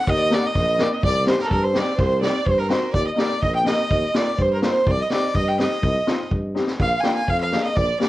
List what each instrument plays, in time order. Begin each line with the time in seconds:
Already playing: violin F#5
0.07 tuba D#2, violin D#5, kick
0.17 violin D5
0.23 violin D#5
0.30 upright piano A#3 D#4 G4, violin D5, snare
0.38 violin F#5
0.44 violin D#5
0.55 tuba A#1, kick, snare
0.79 upright piano A#3 D#4 A#4, violin D5, snare
0.92 violin D#5, snare
1.03 tuba C2, violin D5, kick
1.27 upright piano C4 D#4 G4, violin C5, snare
1.39 violin A#4, snare
1.44 violin A4
1.50 tuba G2, violin A#4, kick
1.63 violin C5
1.73 upright piano C4 D#4 G4, violin D5, snare
1.78 violin D5
1.87 snare
1.92 violin D5
1.97 tuba C2, violin C5, kick, snare
2.21 upright piano C4 D#4 G4, violin D5, snare
2.46 tuba G2, violin C5, kick
2.58 violin A#4, snare
2.70 upright piano C4 D#4 F#4, violin C5, snare
2.93 tuba D#2, violin D5, kick
3.07 violin D#5
3.16 upright piano A#3 D#4 G4, violin D5, snare
3.41 tuba A#1, violin D#5, kick
3.55 violin G5
3.64 upright piano A#3 D#4 G4, violin D#5, snare
3.90 tuba D#2, kick
4.14 upright piano A#3 D#4 F4, violin D5, snare
4.38 tuba G2, violin C5, kick
4.53 violin A#4
4.62 upright piano A#3 D#4 F4, violin C5, snare
4.87 tuba C2, violin D5, kick
4.99 violin D#5
5.10 upright piano C4 D#4 G4, violin D5, snare
5.35 tuba G2, violin D#5, kick
5.48 violin G5
5.59 upright piano C4 D#4 G4, violin D#5, snare
5.83 tuba C2, kick
6.07 upright piano C4 D#4 F4, snare
6.31 tuba G2, kick
6.55 upright piano C4 D#4 G4, snare
6.67 snare
6.80 tuba A#1, violin F5, kick
7.00 upright piano A#3 D4 F4, violin G#5, snare
7.04 violin G5
7.14 violin G#5
7.28 tuba F2, violin F5, kick
7.41 violin F5
7.52 upright piano A#3 D4 G#4, snare
7.64 violin D#5
7.76 tuba A#1, violin D5, kick
8.00 upright piano A#3 D4 G4, violin D5, snare